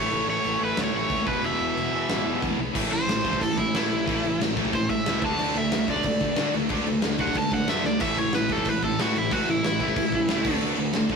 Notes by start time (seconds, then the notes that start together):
Already playing: A2 E3 A3 E4 C#5
0.11 A1 A2 E3 A3 C#4 E4, crash
0.27 A1 A2 E3 A3 C#4 E4 C#5
0.43 A1 A2 E3 A3 C#4 E4, crash
0.59 A1 A2 E3 A3 C#4 E4
0.65 B4
0.75 D2 A2 E3 A3 C#4 E4, snare, crash
0.82 C#5
0.94 A1 A2 E3 A3 C#4 E4 C#5
1.10 D2 A2 E3 A3 C#4 E4, kick, crash
1.26 E1 E2 B2 E3 G#3 B3 E4 B4, kick
1.30 E3
1.42 E1 E3 G#3 B3 E4 E5, crash
1.59 E1 E3 G#3 B3 E4
1.75 E1 E3 G#3 B3 E4, crash
1.91 E1 E2 B2 E3 G#3 B3 E4
2.08 A1 E3 G#3 B3 E4, snare, crash
2.25 E1 E3 G#3 B3 E4
2.42 E2 E3 G#3 B3 E4, kick, crash
2.58 B1 E3 G#3 B3 E4
2.75 A1 A2 E3 A3 C#4 E4 A4, kick, crash
2.92 A1 A2 E3 C5, crash
3.08 A1 A2 E3, snare, crash
3.25 A1 A2 E3 A3 C#4 E4 A4, kick, crash
3.33 kick
3.41 A1 A2 E3 A4, kick, crash
3.57 A1 A2 E3 E4, kick, crash
3.74 A2 E3 A3 C#4 E4 A4, snare, crash
3.92 A1 A2 E3, crash
4.06 A1 A2 E3 A3 C#4 E4 A4, kick, crash
4.10 A3
4.24 A1 A2 E3, crash
4.40 A1 A2 E3, snare, crash
4.55 A2 E3 A3 C#4 E4 A4, kick, crash
4.59 E3 A3
4.65 kick
4.73 A2 E3 C5, kick, crash
4.90 A1 A2 E3 E5, kick, crash
5.05 C#2 A2 E3 A3 C#4 E4 A4, snare, crash
5.22 D2 D3 A3 D4 F#4 A4 A5, kick, crash
5.38 D2 D3 A3, crash
5.43 D4
5.54 D2 D3 A3 E5, crash
5.72 D2 D3 A3 D4 F#4, snare, crash
5.76 A4
5.88 D2 D3 A3 D5, kick, crash
5.92 D4
5.96 kick
6.03 D2 D3 A3, kick, crash
6.08 A3
6.20 D2 D3 A3 D4 F#4 A4, kick, crash
6.24 D3 A3
6.36 D3 A3, snare, crash
6.41 A3 D4
6.53 D2 D3 A3 D4 F#4 A4, crash
6.69 D2 D3 A3 D4, kick, crash
6.87 D2 D3 A3, crash
7.01 D2 D3 A3 D4 F#4, snare, crash
7.06 A4
7.18 D3 A3 D4 F#5, kick, crash
7.27 kick
7.34 D3 A3 A5, kick, crash
7.51 D2 D3 A3 D4 F#4 A4 F#5, kick, crash
7.56 D3
7.68 F#2 D3 A3 D4 E5, snare, crash
7.84 D2 D3 A3 D5, snare
8.00 A1 A2 E3 A3 C#4 E4 E5, kick, crash
8.04 A4
8.17 A1 A2 E3 C#5, crash
8.33 A1 A2 E3 B4, snare, crash
8.48 A1 A2 E3 A3 C#4 E4 A4, kick, crash
8.58 kick
8.65 A1 A2 E3 B4, kick, crash
8.82 A1 A2 E3 A4, kick, crash
8.98 A2 E3 A3 C#4 E4 F#4 A4, snare, crash
9.15 A1 A2 E3 E4, crash
9.30 A1 A2 E3 A3 C#4 E4 F#4 A4, kick, crash
9.48 A1 A2 E3 E4, crash
9.64 A1 A2 E3 E4, snare, crash
9.80 A2 E3 A3 C#4 E4 A4, kick, crash
9.88 kick
9.96 A2 E3, kick, crash
10.12 A1 A2 E3, kick, crash
10.28 C#2 A2 E3 A3 C#4 E4, snare, crash
10.32 A4
10.45 D2 D3 A3 D4 F#4 A4, kick, crash
10.61 D2 D3 A3 D4, crash
10.77 D2 D3 A3, crash
10.92 D2 D3 A3 D4 F#4 A4, snare, crash
11.09 D2 D3 A3 D4, kick, crash